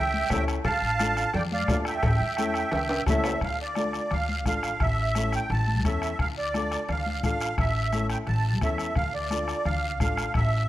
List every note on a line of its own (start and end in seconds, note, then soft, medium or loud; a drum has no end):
0.00 0.24 C#2 loud
0.00 0.44 E5 medium
0.00 0.44 G5 loud
0.14 high conga medium
0.30 0.58 C#2 medium
0.30 0.54 C#4 medium
0.30 0.55 E4 medium
0.30 0.55 A4 medium
0.30 bombo low medium
0.30 bombo rim medium
0.30 high conga medium
0.30 low conga medium
0.30 low timbale medium
0.30 short guiro medium
0.48 bombo rim medium
0.48 short guiro medium
0.65 0.79 D2 loud
0.65 1.31 F5 medium
0.65 1.36 A5 loud
0.65 bombo low medium
0.65 bombo rim medium
0.65 cowbell medium
0.65 long guiro medium
0.82 1.24 A1 medium
1.00 1.24 D4 medium
1.00 1.24 F4 medium
1.00 1.24 A4 medium
1.00 bombo rim medium
1.00 high conga medium
1.00 short guiro medium
1.17 bombo rim medium
1.17 short guiro medium
1.34 1.62 F2 loud
1.34 1.43 D5 medium
1.34 1.42 G5 loud
1.34 bombo rim medium
1.34 cowbell medium
1.34 low conga medium
1.34 long guiro medium
1.52 1.85 D5 medium
1.52 1.84 F5 medium
1.52 high conga medium
1.68 1.96 E2 medium
1.68 1.93 D4 medium
1.68 1.93 F4 medium
1.68 1.93 A4 medium
1.68 bombo low medium
1.68 bombo rim medium
1.68 high conga medium
1.68 low timbale medium
1.68 short guiro medium
1.85 3.04 E5 medium
1.85 3.04 G5 medium
1.85 bombo rim loud
1.85 short guiro medium
2.03 2.17 A1 loud
2.03 bombo low medium
2.03 bombo rim loud
2.03 cowbell medium
2.03 long guiro medium
2.20 2.62 E2 medium
2.37 2.62 C#4 medium
2.37 2.62 E4 medium
2.37 2.62 A4 medium
2.37 bombo rim medium
2.37 high conga medium
2.37 short guiro medium
2.54 bombo rim medium
2.54 short guiro medium
2.71 3.00 C#2 loud
2.71 bombo rim medium
2.71 cowbell medium
2.71 low conga medium
2.71 high timbale medium
2.71 long guiro medium
2.89 3.06 G5 medium
2.89 high timbale medium
3.06 3.34 C#2 medium
3.06 3.31 C#4 medium
3.06 3.32 E4 medium
3.06 3.32 A4 loud
3.06 3.40 E5 medium
3.06 3.41 E5 medium
3.06 bombo low medium
3.06 bombo rim medium
3.06 high conga medium
3.06 low conga medium
3.06 low timbale medium
3.06 short guiro medium
3.24 bombo rim medium
3.24 low timbale medium
3.24 short guiro medium
3.41 3.97 D2 medium
3.41 3.59 F5 loud
3.41 bombo low medium
3.41 bombo rim medium
3.41 long guiro medium
3.62 4.14 D5 medium
3.75 4.00 D4 medium
3.75 4.01 F4 medium
3.75 4.01 A4 medium
3.75 bombo rim medium
3.75 high conga medium
3.75 short guiro medium
3.93 bombo rim medium
3.93 short guiro medium
4.11 4.46 D2 loud
4.11 4.44 F5 loud
4.11 bombo rim medium
4.11 low conga medium
4.11 long guiro medium
4.29 high conga medium
4.45 4.73 A1 medium
4.45 4.70 D4 medium
4.45 4.70 F4 medium
4.45 4.70 A4 medium
4.45 4.82 F5 loud
4.45 bombo low medium
4.45 bombo rim medium
4.45 high conga medium
4.45 low conga medium
4.45 short guiro medium
4.63 bombo rim medium
4.63 short guiro medium
4.80 5.36 A1 loud
4.80 5.35 E5 loud
4.80 bombo low medium
4.80 bombo rim medium
4.80 low conga medium
4.80 long guiro medium
5.15 5.39 C#4 medium
5.15 5.40 E4 medium
5.15 5.40 A4 medium
5.15 bombo rim medium
5.15 high conga medium
5.15 short guiro medium
5.33 5.51 G5 loud
5.33 bombo rim medium
5.33 short guiro medium
5.50 5.85 A1 loud
5.50 5.83 A5 loud
5.50 bombo rim medium
5.50 low conga medium
5.50 long guiro medium
5.67 high conga medium
5.84 6.12 E2 medium
5.84 6.09 C#4 medium
5.84 6.09 E4 medium
5.84 6.09 A4 medium
5.84 6.18 E5 medium
5.84 bombo low medium
5.84 bombo rim medium
5.84 high conga medium
5.84 short guiro medium
6.02 bombo rim medium
6.02 short guiro medium
6.19 6.75 D2 loud
6.19 6.28 F5 loud
6.19 bombo low medium
6.19 bombo rim medium
6.19 long guiro medium
6.38 6.91 D5 loud
6.54 6.78 D4 medium
6.54 6.78 F4 medium
6.54 6.79 A4 medium
6.54 bombo rim medium
6.54 high conga medium
6.54 short guiro medium
6.72 bombo rim medium
6.72 short guiro medium
6.89 7.23 D2 loud
6.89 7.22 F5 medium
6.89 bombo rim medium
6.89 low conga medium
6.89 long guiro medium
7.06 high conga medium
7.23 7.51 A1 medium
7.23 7.47 D4 medium
7.23 7.47 F4 medium
7.23 7.48 A4 medium
7.23 7.56 F5 loud
7.23 bombo low medium
7.23 bombo rim medium
7.23 high conga medium
7.23 low conga medium
7.23 short guiro medium
7.41 bombo rim medium
7.41 short guiro medium
7.58 8.13 A1 loud
7.58 8.07 E5 loud
7.58 bombo low medium
7.58 bombo rim medium
7.58 low conga medium
7.58 long guiro medium
7.92 8.17 C#4 medium
7.92 8.17 E4 medium
7.92 8.17 A4 medium
7.92 bombo rim medium
7.92 high conga medium
7.92 short guiro medium
8.10 8.18 G5 loud
8.10 bombo rim medium
8.10 short guiro medium
8.27 8.61 A1 loud
8.27 8.60 A5 medium
8.27 bombo rim medium
8.27 low conga medium
8.27 long guiro medium
8.61 8.89 E2 medium
8.61 8.86 C#4 medium
8.61 8.86 E4 medium
8.61 8.86 A4 medium
8.61 8.94 E5 medium
8.61 bombo low medium
8.61 bombo rim medium
8.61 high conga medium
8.61 low conga medium
8.61 short guiro medium
8.78 bombo rim medium
8.78 short guiro medium
8.95 9.52 D2 medium
8.95 9.14 F5 loud
8.95 bombo low medium
8.95 bombo rim medium
8.95 low conga medium
8.95 long guiro medium
9.15 9.68 D5 medium
9.30 9.55 D4 medium
9.30 9.55 F4 medium
9.30 9.55 A4 medium
9.30 bombo rim medium
9.30 high conga medium
9.30 short guiro medium
9.48 bombo rim medium
9.48 short guiro medium
9.65 10.00 D2 loud
9.65 9.99 F5 loud
9.65 bombo rim medium
9.65 low conga medium
9.65 long guiro medium
10.00 10.28 A1 medium
10.00 10.25 D4 medium
10.00 10.25 F4 medium
10.00 10.25 A4 medium
10.00 10.33 F5 medium
10.00 bombo low medium
10.00 bombo rim medium
10.00 high conga medium
10.00 short guiro medium
10.17 bombo rim medium
10.17 short guiro medium
10.34 10.69 A1 loud
10.34 10.69 E5 loud
10.34 bombo low medium
10.34 bombo rim medium
10.34 long guiro medium